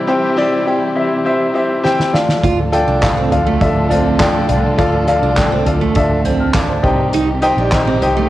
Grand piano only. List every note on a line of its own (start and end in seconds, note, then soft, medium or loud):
0.00 0.07 C4 loud
0.00 0.08 E4 loud
0.00 0.08 G4 loud
0.00 0.08 C5 loud
0.00 0.38 D5 loud
0.00 0.96 E5 loud
0.00 0.08 G5 loud
0.07 0.92 C3 medium
0.07 0.33 C4 loud
0.07 0.33 E4 loud
0.07 0.33 G4 loud
0.07 0.33 C5 loud
0.07 0.33 G5 loud
0.37 0.62 C4 loud
0.37 0.62 E4 loud
0.37 0.63 G4 loud
0.37 0.63 C5 loud
0.37 0.63 D5 loud
0.67 0.92 C4 medium
0.67 0.92 E4 medium
0.67 0.92 G4 medium
0.67 0.92 C5 medium
0.67 0.92 G5 medium
0.95 1.21 C4 medium
0.95 1.21 E4 medium
0.95 1.21 G4 medium
0.95 1.21 C5 medium
0.95 1.22 E5 medium
1.25 1.51 C4 medium
1.25 1.51 E4 medium
1.25 1.51 G4 medium
1.25 1.51 C5 medium
1.25 1.51 E5 medium
1.54 1.80 C4 medium
1.54 1.80 E4 medium
1.54 1.80 G4 medium
1.54 1.80 C5 medium
1.54 1.80 E5 loud
1.83 2.09 C4 loud
1.83 2.09 E4 loud
1.83 2.09 G4 loud
1.83 2.09 C5 loud
1.83 2.10 G5 loud
2.13 2.98 D3 medium
2.13 2.64 D4 medium
2.13 2.64 F4 medium
2.13 2.64 A4 medium
2.13 2.64 D5 medium
2.13 2.64 F5 medium
2.72 2.98 D4 loud
2.72 2.98 F4 loud
2.72 2.98 A4 loud
2.72 2.98 D5 loud
2.72 2.98 G5 loud
3.02 3.27 D4 medium
3.02 3.27 F4 medium
3.02 3.27 A4 medium
3.02 3.27 D5 medium
3.02 3.27 F5 medium
3.31 3.56 D4 medium
3.31 3.56 F4 medium
3.31 3.56 A4 medium
3.31 3.57 D5 medium
3.31 3.57 F5 loud
3.61 3.86 D4 medium
3.61 3.86 F4 medium
3.61 3.86 A4 medium
3.61 3.86 D5 medium
3.61 3.86 E5 medium
3.89 4.15 D4 medium
3.89 4.15 F4 medium
3.89 4.15 A4 medium
3.89 4.15 D5 medium
3.89 4.15 F5 medium
4.19 4.45 D4 loud
4.19 4.45 F4 loud
4.19 4.45 A4 loud
4.19 4.45 D5 medium
4.19 4.45 G5 loud
4.48 5.33 D3 medium
4.48 4.74 D4 medium
4.48 4.74 F4 medium
4.48 4.74 A4 medium
4.48 4.74 D5 medium
4.48 4.74 F5 medium
4.78 5.03 D4 loud
4.78 5.03 F4 loud
4.78 5.03 A4 loud
4.78 5.03 D5 loud
4.78 5.04 F5 loud
5.07 5.33 D4 loud
5.07 5.33 F4 loud
5.07 5.33 A4 loud
5.07 5.33 D5 loud
5.07 5.33 F5 loud
5.37 5.62 D4 medium
5.37 5.62 F4 medium
5.37 5.62 A4 medium
5.37 5.62 D5 medium
5.37 5.63 G5 medium
5.66 5.92 D4 medium
5.66 5.92 F4 medium
5.66 5.92 A4 medium
5.66 5.92 D5 medium
5.66 5.92 F5 loud
5.96 6.21 D4 medium
5.96 6.21 F4 medium
5.96 6.21 A4 medium
5.96 6.21 D5 medium
5.96 6.22 E5 loud
6.25 6.39 G6 medium
6.40 6.55 A5 medium
6.40 6.54 F6 medium
6.54 6.69 F5 medium
6.54 6.68 D6 medium
6.69 6.82 C5 medium
6.69 6.97 A5 medium
6.83 7.68 C3 medium
6.83 7.34 D#4 medium
6.83 7.34 G4 medium
6.83 7.34 C5 medium
6.83 7.34 D#5 medium
6.83 7.34 G5 loud
7.42 7.68 D#4 loud
7.42 7.68 G4 loud
7.42 7.68 C5 loud
7.42 7.68 D#5 loud
7.42 7.68 G5 loud
7.72 7.97 D#4 medium
7.72 7.98 G4 medium
7.72 7.98 C5 medium
7.72 7.98 D#5 medium
7.72 7.98 G5 medium
8.02 8.27 D#4 medium
8.02 8.27 G4 medium
8.02 8.27 C5 medium
8.02 8.27 D#5 medium
8.02 8.28 G5 loud